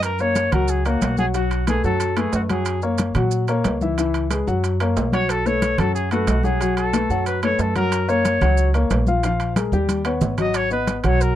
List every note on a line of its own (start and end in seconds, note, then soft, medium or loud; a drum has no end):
0.00 0.47 F#2 medium
0.00 high conga soft
0.00 high timbale medium
0.00 maracas medium
0.04 0.22 A#4 medium
0.19 0.47 A#3 medium
0.19 0.47 A#4 medium
0.19 0.54 C#5 medium
0.19 0.47 C#5 medium
0.19 high conga soft
0.19 maracas soft
0.36 high conga medium
0.36 high timbale medium
0.36 low timbale medium
0.36 maracas medium
0.52 0.98 C#2 medium
0.52 0.79 F#3 medium
0.52 0.80 F#4 medium
0.52 0.71 A#4 medium
0.52 0.80 F#5 medium
0.52 low conga medium
0.52 high timbale medium
0.52 maracas soft
0.68 0.87 G#4 medium
0.68 maracas medium
0.85 1.13 A#3 medium
0.85 1.18 F#4 medium
0.85 1.13 A#4 medium
0.85 1.13 C#5 medium
0.85 high conga soft
0.85 high timbale medium
0.85 maracas soft
1.02 1.78 B1 medium
1.02 high conga medium
1.02 high timbale medium
1.02 low timbale medium
1.02 maracas medium
1.17 1.32 F#3 medium
1.17 1.32 F#4 medium
1.17 1.26 G#4 medium
1.17 1.32 F#5 medium
1.17 high conga medium
1.17 maracas soft
1.34 1.62 F#3 medium
1.34 1.62 F#4 medium
1.34 1.66 F#4 medium
1.34 1.62 F#5 medium
1.34 high conga soft
1.34 high timbale medium
1.34 maracas medium
1.51 high conga soft
1.51 high timbale medium
1.51 maracas soft
1.67 1.81 A3 medium
1.67 1.83 G#4 medium
1.67 1.81 A4 medium
1.67 1.81 B4 medium
1.67 high conga medium
1.67 high timbale medium
1.67 low timbale medium
1.67 maracas medium
1.84 2.30 F#2 medium
1.84 2.11 F#3 medium
1.84 2.11 F#4 medium
1.84 2.20 A4 medium
1.84 2.11 F#5 medium
1.84 high conga soft
1.84 maracas soft
2.00 high conga soft
2.00 high timbale medium
2.00 maracas medium
2.17 2.44 A3 medium
2.17 2.34 G#4 medium
2.17 2.44 A4 medium
2.17 2.44 B4 medium
2.17 high conga soft
2.17 high timbale medium
2.17 maracas soft
2.33 3.10 F#2 medium
2.33 2.42 F#4 medium
2.33 high conga soft
2.33 low timbale medium
2.33 maracas medium
2.50 2.77 F#3 medium
2.50 2.77 F#4 medium
2.50 2.81 G#4 medium
2.50 2.77 F#5 medium
2.50 high conga medium
2.50 high timbale medium
2.50 maracas soft
2.65 high conga soft
2.65 high timbale medium
2.65 maracas medium
2.82 3.10 A#3 medium
2.82 3.10 A#4 medium
2.82 3.10 C#5 medium
2.82 high conga soft
2.82 maracas soft
2.98 high conga medium
2.98 high timbale medium
2.98 low timbale medium
2.98 maracas medium
3.15 3.61 A#2 medium
3.15 3.43 F#3 medium
3.15 3.43 F#4 medium
3.15 3.43 F#5 medium
3.15 low conga medium
3.15 high timbale medium
3.15 maracas soft
3.31 high conga soft
3.31 maracas medium
3.48 3.75 A#3 medium
3.48 3.76 A#4 medium
3.48 3.76 C#5 medium
3.48 high conga soft
3.48 high timbale medium
3.48 maracas soft
3.64 4.41 C#2 medium
3.64 high conga medium
3.64 high timbale medium
3.64 low timbale medium
3.64 maracas medium
3.81 3.95 E3 medium
3.81 3.95 E4 medium
3.81 3.95 E5 medium
3.81 high conga medium
3.81 maracas soft
3.98 4.25 E3 medium
3.98 4.25 E4 medium
3.98 4.25 E5 medium
3.98 high conga soft
3.98 high timbale medium
3.98 maracas medium
4.14 high conga soft
4.14 high timbale medium
4.14 maracas soft
4.31 4.44 G#3 medium
4.31 4.44 G#4 medium
4.31 4.44 B4 medium
4.31 high conga medium
4.31 high timbale medium
4.31 low timbale medium
4.31 maracas medium
4.47 4.93 F#2 medium
4.47 4.74 F#3 medium
4.47 4.74 F#4 medium
4.47 4.75 F#5 medium
4.47 high conga soft
4.47 maracas soft
4.64 high conga soft
4.64 high timbale medium
4.64 maracas medium
4.80 5.07 A#3 medium
4.80 5.07 A#4 medium
4.80 5.08 C#5 medium
4.80 high conga soft
4.80 high timbale medium
4.80 maracas soft
4.96 5.73 B1 medium
4.96 high conga soft
4.96 low timbale medium
4.96 maracas medium
5.12 5.40 F#3 medium
5.12 5.40 F#4 medium
5.12 5.32 C#5 loud
5.12 5.40 F#5 medium
5.12 high conga medium
5.12 high timbale medium
5.12 maracas soft
5.29 5.48 A4 medium
5.29 high conga soft
5.29 high timbale medium
5.29 maracas medium
5.46 5.73 A3 medium
5.46 5.73 A4 medium
5.46 5.73 B4 medium
5.46 5.81 C#5 medium
5.46 high conga soft
5.46 maracas soft
5.62 high conga medium
5.62 high timbale medium
5.62 low timbale medium
5.62 maracas medium
5.78 6.24 F#2 medium
5.78 6.06 F#3 medium
5.78 6.06 F#4 medium
5.78 5.94 A4 loud
5.78 6.06 F#5 medium
5.78 low conga medium
5.78 high timbale medium
5.78 maracas soft
5.95 6.10 G#4 medium
5.95 high conga soft
5.95 maracas medium
6.11 6.39 A3 medium
6.11 6.46 F#4 medium
6.11 6.39 A4 medium
6.11 6.39 B4 medium
6.11 high conga soft
6.11 high timbale medium
6.11 maracas soft
6.27 7.04 B1 medium
6.27 high conga medium
6.27 high timbale medium
6.27 low timbale medium
6.27 maracas medium
6.43 6.58 F#3 medium
6.43 6.58 F#4 medium
6.43 6.77 G#4 loud
6.43 6.58 F#5 medium
6.43 high conga medium
6.43 maracas soft
6.61 6.88 F#3 medium
6.61 6.88 F#4 medium
6.61 6.88 F#5 medium
6.61 high conga soft
6.61 high timbale medium
6.61 maracas medium
6.77 7.23 A4 medium
6.77 high conga soft
6.77 high timbale medium
6.77 maracas soft
6.93 7.07 A3 medium
6.93 7.07 A4 medium
6.93 7.07 B4 medium
6.93 high conga medium
6.93 high timbale medium
6.93 low timbale medium
6.93 maracas medium
7.09 7.56 F#2 medium
7.09 7.37 F#3 medium
7.09 7.37 F#4 medium
7.09 7.37 F#5 medium
7.09 high conga soft
7.09 maracas soft
7.26 7.42 B4 medium
7.26 high conga soft
7.26 high timbale medium
7.26 maracas medium
7.43 7.70 A3 medium
7.43 7.70 A4 medium
7.43 7.70 B4 medium
7.43 7.62 C#5 medium
7.43 high conga soft
7.43 high timbale medium
7.43 maracas soft
7.59 8.35 F#2 medium
7.59 7.75 A4 medium
7.59 high conga soft
7.59 low timbale medium
7.59 maracas medium
7.76 8.03 F#3 medium
7.76 8.03 F#4 medium
7.76 8.11 A#4 loud
7.76 8.03 F#5 medium
7.76 high conga medium
7.76 high timbale medium
7.76 maracas soft
7.92 high conga soft
7.92 high timbale medium
7.92 maracas medium
8.08 8.35 A#3 medium
8.08 8.35 A#4 medium
8.08 8.36 C#5 medium
8.08 8.74 C#5 medium
8.08 high conga soft
8.08 maracas soft
8.25 high conga medium
8.25 high timbale medium
8.25 low timbale medium
8.25 maracas medium
8.41 8.87 C#2 medium
8.41 8.69 F#3 medium
8.41 8.69 F#4 medium
8.41 8.69 F#5 medium
8.41 low conga medium
8.41 high timbale medium
8.41 maracas soft
8.57 high conga soft
8.57 maracas medium
8.74 9.01 A#3 medium
8.74 9.02 A#4 medium
8.74 9.02 C#5 medium
8.74 high conga soft
8.74 high timbale medium
8.74 maracas soft
8.90 9.67 A#1 medium
8.90 high conga medium
8.90 high timbale medium
8.90 low timbale medium
8.90 maracas medium
9.07 9.21 F3 medium
9.07 9.21 F4 medium
9.07 9.21 F5 medium
9.07 high conga medium
9.07 maracas soft
9.23 9.51 F3 medium
9.23 9.51 F4 medium
9.23 9.51 F5 medium
9.23 high conga soft
9.23 high timbale medium
9.23 maracas medium
9.40 high conga soft
9.40 high timbale medium
9.40 maracas soft
9.56 9.70 G#3 medium
9.56 9.70 G#4 medium
9.56 9.70 A#4 medium
9.56 high conga medium
9.56 high timbale medium
9.56 low timbale medium
9.56 maracas medium
9.72 10.18 D#2 medium
9.72 10.00 G3 medium
9.72 10.00 G4 medium
9.72 10.00 G5 medium
9.72 high conga medium
9.72 maracas soft
9.89 high conga medium
9.89 high timbale medium
9.89 maracas medium
10.05 10.32 B3 medium
10.05 10.33 B4 medium
10.05 10.33 C#5 medium
10.05 high timbale medium
10.05 maracas soft
10.21 10.98 G#1 medium
10.21 low conga loud
10.21 low timbale medium
10.21 maracas medium
10.38 10.65 F#3 medium
10.38 10.65 F#4 medium
10.38 10.58 D#5 medium
10.38 10.65 F#5 medium
10.38 low conga medium
10.38 high timbale medium
10.38 maracas soft
10.54 10.72 C#5 loud
10.54 high timbale medium
10.54 maracas medium
10.71 10.98 B3 medium
10.71 10.98 B4 medium
10.71 11.00 B4 medium
10.71 10.98 D#5 medium
10.71 high conga soft
10.71 maracas soft
10.87 high conga medium
10.87 high timbale medium
10.87 low timbale medium
10.87 maracas medium
11.00 11.35 B1 medium
11.00 11.31 F#3 medium
11.00 11.07 B4 medium
11.00 low conga medium
11.00 high timbale medium
11.00 maracas soft
11.05 11.31 F#4 medium
11.05 11.23 C#5 loud
11.05 11.32 F#5 medium
11.21 11.35 A#4 medium
11.21 high conga soft
11.21 maracas medium